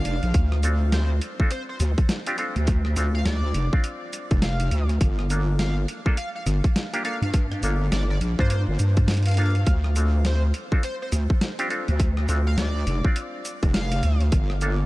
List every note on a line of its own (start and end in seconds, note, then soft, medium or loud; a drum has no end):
0.00 0.33 A#3 medium
0.00 0.33 D4 medium
0.00 0.33 F4 medium
0.00 0.33 C5 loud
0.00 0.42 F5 medium
0.00 swell medium
0.05 0.20 F1 loud
0.05 closed hi-hat medium
0.23 0.33 A#1 medium
0.23 closed hi-hat soft
0.34 1.20 D2 medium
0.34 kick loud
0.34 closed hi-hat medium
0.52 cross-stick medium
0.63 1.35 C4 medium
0.63 1.35 D4 medium
0.63 1.35 F4 medium
0.63 1.35 A4 medium
0.63 closed hi-hat medium
0.63 shaker medium
0.92 1.10 C5 loud
0.92 snare loud
0.92 closed hi-hat medium
1.21 closed hi-hat medium
1.40 1.51 C4 loud
1.40 1.51 D4 medium
1.40 1.51 F4 medium
1.40 1.51 A4 loud
1.40 kick loud
1.51 1.62 C5 medium
1.51 closed hi-hat medium
1.69 1.76 C5 medium
1.80 1.95 D2 loud
1.80 cross-stick soft
1.80 closed hi-hat medium
1.80 shaker medium
1.98 kick loud
1.98 closed hi-hat soft
2.09 snare loud
2.09 closed hi-hat medium
2.27 2.37 C4 loud
2.27 2.37 D4 medium
2.27 2.37 F4 medium
2.27 2.37 G4 loud
2.27 closed hi-hat medium
2.38 2.56 C4 medium
2.38 2.56 D4 medium
2.38 2.56 F4 medium
2.38 2.56 A4 medium
2.38 closed hi-hat medium
2.56 2.95 D2 medium
2.56 closed hi-hat soft
2.67 kick loud
2.67 closed hi-hat medium
2.85 cross-stick medium
2.96 3.24 D2 medium
2.96 3.21 C4 medium
2.96 3.21 D4 medium
2.96 3.21 F4 medium
2.96 3.21 A4 medium
2.96 closed hi-hat medium
2.96 shaker medium
3.14 3.24 F5 medium
3.25 3.53 D2 loud
3.25 3.73 D5 loud
3.25 snare loud
3.25 closed hi-hat medium
3.54 3.70 F1 loud
3.54 closed hi-hat medium
3.73 4.99 C4 loud
3.73 4.99 D4 medium
3.73 4.99 F4 medium
3.73 4.99 D5 loud
3.73 kick loud
3.84 closed hi-hat medium
4.13 closed hi-hat medium
4.13 shaker medium
4.31 4.70 F1 loud
4.31 kick loud
4.31 closed hi-hat soft
4.42 4.89 F5 medium
4.42 snare loud
4.42 closed hi-hat medium
4.60 closed hi-hat medium
4.71 4.99 D2 loud
4.71 closed hi-hat medium
4.89 closed hi-hat soft
5.01 5.86 G1 loud
5.01 kick loud
5.01 closed hi-hat medium
5.19 cross-stick medium
5.30 6.02 A#3 medium
5.30 6.02 D4 medium
5.30 6.02 F4 medium
5.30 6.02 A4 medium
5.30 closed hi-hat medium
5.30 shaker medium
5.59 5.76 F5 medium
5.59 snare loud
5.59 closed hi-hat medium
5.88 closed hi-hat medium
6.06 6.17 A#3 loud
6.06 6.17 D4 medium
6.06 6.17 F4 medium
6.06 6.17 A4 loud
6.06 kick loud
6.17 6.29 F5 medium
6.17 closed hi-hat medium
6.35 6.42 F5 medium
6.46 6.61 G1 loud
6.46 cross-stick soft
6.46 closed hi-hat medium
6.46 shaker medium
6.64 kick loud
6.64 closed hi-hat soft
6.76 snare loud
6.76 closed hi-hat medium
6.93 7.03 A#3 loud
6.93 7.03 D4 medium
6.93 7.03 F4 medium
6.93 7.03 G4 loud
6.93 closed hi-hat medium
7.05 7.22 A#3 medium
7.05 7.22 D4 medium
7.05 7.22 F4 medium
7.05 7.22 A4 medium
7.05 7.16 F5 medium
7.05 closed hi-hat medium
7.22 7.61 G2 loud
7.22 7.30 F5 medium
7.22 closed hi-hat soft
7.34 kick loud
7.34 closed hi-hat medium
7.52 cross-stick medium
7.63 7.90 G1 loud
7.63 7.87 A#3 medium
7.63 7.87 D4 medium
7.63 7.87 F4 medium
7.63 7.87 A4 medium
7.63 closed hi-hat medium
7.63 shaker medium
7.92 8.19 G1 loud
7.92 8.03 D5 medium
7.92 snare loud
7.92 closed hi-hat medium
8.10 8.17 D5 medium
8.21 8.36 A#1 loud
8.21 closed hi-hat medium
8.39 8.65 G2 loud
8.39 9.35 A#3 medium
8.39 9.35 D4 medium
8.39 9.35 F4 medium
8.39 9.35 C5 loud
8.39 8.47 C5 medium
8.39 kick loud
8.50 8.62 C5 medium
8.50 closed hi-hat medium
8.68 8.78 G1 medium
8.79 9.65 G2 loud
8.79 closed hi-hat medium
8.79 shaker medium
8.97 kick loud
8.97 closed hi-hat soft
9.08 snare loud
9.08 closed hi-hat medium
9.11 closed hi-hat medium
9.14 closed hi-hat medium
9.17 closed hi-hat soft
9.23 closed hi-hat soft
9.26 9.74 F5 loud
9.26 closed hi-hat medium
9.28 closed hi-hat medium
9.31 closed hi-hat soft
9.34 closed hi-hat soft
9.37 9.55 A#3 medium
9.37 9.55 D4 medium
9.37 9.55 F4 medium
9.37 9.55 A4 medium
9.37 closed hi-hat medium
9.42 closed hi-hat soft
9.46 closed hi-hat soft
9.50 closed hi-hat soft
9.55 closed hi-hat soft
9.67 10.52 D2 medium
9.67 kick loud
9.67 closed hi-hat medium
9.84 cross-stick medium
9.96 10.68 C4 medium
9.96 10.68 D4 medium
9.96 10.68 F4 medium
9.96 10.68 A4 medium
9.96 closed hi-hat medium
9.96 shaker medium
10.25 10.42 C5 loud
10.25 snare loud
10.25 closed hi-hat medium
10.54 closed hi-hat medium
10.72 10.83 C4 medium
10.72 10.83 D4 medium
10.72 10.83 F4 medium
10.72 10.83 A4 loud
10.72 kick loud
10.83 10.95 C5 medium
10.83 closed hi-hat medium
11.02 11.09 C5 medium
11.12 11.27 D2 loud
11.12 cross-stick soft
11.12 closed hi-hat medium
11.12 shaker medium
11.30 kick loud
11.41 snare loud
11.41 closed hi-hat medium
11.59 11.69 C4 loud
11.59 11.69 D4 medium
11.59 11.69 F4 medium
11.59 11.69 G4 loud
11.59 closed hi-hat medium
11.70 11.88 C4 medium
11.70 11.88 D4 medium
11.70 11.88 F4 medium
11.70 11.88 A4 medium
11.70 closed hi-hat medium
11.88 12.27 D2 loud
11.88 closed hi-hat soft
12.00 kick loud
12.00 closed hi-hat medium
12.17 cross-stick medium
12.29 12.56 D2 loud
12.29 12.53 C4 medium
12.29 12.53 D4 medium
12.29 12.53 F4 medium
12.29 12.53 A4 medium
12.29 closed hi-hat medium
12.29 shaker medium
12.47 12.56 F5 medium
12.58 12.85 D2 loud
12.58 13.05 D5 medium
12.58 snare loud
12.58 closed hi-hat medium
12.87 13.02 F1 loud
12.87 closed hi-hat medium
13.05 14.31 C4 loud
13.05 14.31 D4 medium
13.05 14.31 F4 medium
13.05 14.31 D5 loud
13.05 kick loud
13.16 closed hi-hat medium
13.45 closed hi-hat medium
13.45 shaker medium
13.63 14.02 F1 loud
13.63 kick loud
13.63 closed hi-hat soft
13.74 14.21 F5 loud
13.74 snare loud
13.74 closed hi-hat medium
13.92 closed hi-hat medium
14.03 14.31 D2 loud
14.03 closed hi-hat medium
14.20 closed hi-hat soft
14.32 14.86 G1 medium
14.32 kick loud
14.32 closed hi-hat medium
14.50 cross-stick medium
14.61 14.86 A#3 medium
14.61 14.86 D4 medium
14.61 14.86 F4 medium
14.61 14.86 A4 medium
14.61 closed hi-hat medium
14.61 shaker medium